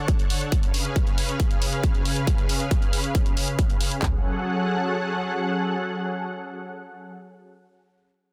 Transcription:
Already playing: D3 D4 A4 C#5 F#5
0.08 kick, closed hi-hat
0.19 closed hi-hat
0.30 open hi-hat
0.41 closed hi-hat
0.52 C#3 C#4 G#4 B4 F5, kick, closed hi-hat
0.63 closed hi-hat
0.74 open hi-hat
0.85 closed hi-hat
0.96 kick, closed hi-hat
1.07 closed hi-hat
1.18 open hi-hat
1.29 closed hi-hat
1.40 kick, closed hi-hat
1.51 closed hi-hat
1.62 open hi-hat
1.73 closed hi-hat
1.83 kick, closed hi-hat
1.95 closed hi-hat
2.05 open hi-hat
2.16 closed hi-hat
2.27 kick, closed hi-hat
2.38 closed hi-hat
2.49 open hi-hat
2.60 closed hi-hat
2.71 kick, closed hi-hat
2.82 closed hi-hat
2.93 open hi-hat
3.04 closed hi-hat
3.15 kick, closed hi-hat
3.26 closed hi-hat
3.37 open hi-hat
3.48 closed hi-hat
3.59 kick, closed hi-hat
3.70 closed hi-hat
3.81 open hi-hat
3.92 closed hi-hat
4.02 F#3 C#4 G#4 A4 F#5, kick, clap, floor tom

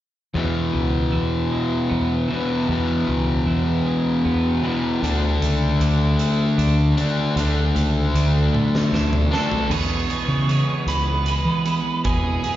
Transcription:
0.34 E2 B2 E3
0.73 C#2 B2
1.12 E2 E3
1.51 G#3
1.89 E2 B3
2.28 E3
2.32 E2 B2
2.67 E2
2.71 B2 E3
3.07 C#2 B2
3.46 E2 E3
3.86 G#3
4.25 E2 B3
4.63 E2 B2 E3
5.01 D2 D3 A3 D4, closed hi-hat
5.42 C#2 A3, closed hi-hat
5.80 D2 D3, closed hi-hat
6.19 A3, closed hi-hat
6.58 D2 D4, closed hi-hat
6.97 D3 A3 D4, closed hi-hat
7.36 D2 D3 A3 D4, closed hi-hat
7.75 C#2 A3, closed hi-hat
8.14 D2 D3, closed hi-hat
8.53 A3, high tom
8.75 snare
8.92 D2 D4, snare
9.13 mid tom
9.31 D3 A3 D4 A4, snare
9.35 D3
9.51 floor tom
9.70 E2 B2 E3 G#3 B3 G#4 C#5, crash
10.09 E3 G#3 B3 G#4, closed hi-hat
10.28 C#3
10.49 E3 G#3 B3 G#4, closed hi-hat
10.86 C#2 E3 G#3 B3 G#4 B4, closed hi-hat
11.26 E3 G#3 B3 G#4, closed hi-hat
11.45 E3
11.65 E3 G#3 B3 G#4, closed hi-hat
12.04 E2 B2 E3 G#3 B3 G#4, kick, closed hi-hat
12.43 E3 G#3 B3 G#4, closed hi-hat

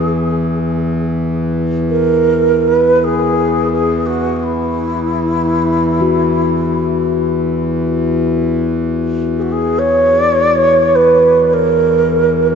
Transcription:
Already playing: E2 E3 G#4
1.89 A#4
2.67 B4
3.04 G#4
3.72 G#4
4.00 G#4
4.06 F#4
4.36 F#4
4.43 E4
6.01 F#4
9.38 F#4 G#4
9.52 G#4
9.78 C#5
10.19 D5
10.31 C#5
10.95 B4
11.53 A#4

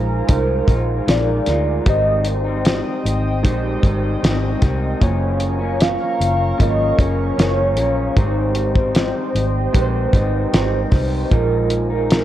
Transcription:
Already playing: A#1 G#3 D#4 F4 A#4 C5 F5 G#5 A#5
0.27 C2 D#3 G#3 D#4 F4 A#4, kick, closed hi-hat
0.67 A#1 D#3 G#3 D#4 F4, kick, closed hi-hat
1.06 A#1 D#3 G#3 D#4 F4 D5, snare, closed hi-hat
1.46 D2 G#3 D#4 F4, snare, closed hi-hat
1.85 G#1 G#2 D#3 G3 G#3 C4 D#4 G4 C5 D#5 G5 D#6, kick, closed hi-hat
2.25 C5, closed hi-hat
2.44 G3 C4 D#4
2.65 snare, closed hi-hat
3.05 G#1, closed hi-hat
3.42 A#1 D#3 G3 G#3 C4 D#4 G4 C5, kick, closed hi-hat
3.47 D#4
3.82 G#1 D#3 G3 C4 D#4, kick, closed hi-hat
4.21 G#1 D#3 G3 C4 D#4, snare, closed hi-hat
4.60 C2 D#3 G3 C4, kick, snare, closed hi-hat
4.64 D#4
5.00 F#1 F#2 C#3 F3 F#3 A#3 C#4 F4 A#4 C#5 F5 A#5 C#6, kick, closed hi-hat
5.40 closed hi-hat
5.59 F3 A#3 C#4
5.81 F5, snare, closed hi-hat
6.21 F#1, closed hi-hat
6.58 G#1 C#3 F3 F#3 A#3 C#4 F4 A#4 D#5, kick, closed hi-hat
6.98 F#1 C#3 F3 A#3 C#5, kick, closed hi-hat
7.02 C#4
7.37 F#1 C#3 F3 A#3, snare, closed hi-hat
7.41 C#4
7.76 A#1 C#3 F3 A#3 C#4, closed hi-hat
8.16 G#1 G#2 D#3 G3 G#3 C4 D#4 G4 C5 D#5 G5, kick, closed hi-hat
8.55 closed hi-hat
8.75 G3 C4 D#4, kick
8.95 snare, closed hi-hat
9.35 G#1, closed hi-hat
9.73 A#1 D#3 G3 G#3 C4 D#4 G4 B4, kick, closed hi-hat
9.77 D#4
9.82 C5
10.13 G#1 D#3 G3 C4 D#4, kick, closed hi-hat
10.52 G#1 D#3 G3 C4 D#4 C5, snare, closed hi-hat
10.91 C2 D#3 G3 C4, kick, snare, open hi-hat
10.95 D#4
11.30 A#1 A#2 F3 G#3 D#4 F4 A#4 F5 A#5, kick, closed hi-hat
11.70 closed hi-hat
11.90 G#3 D#4 A#4
11.94 F3
12.11 snare, closed hi-hat

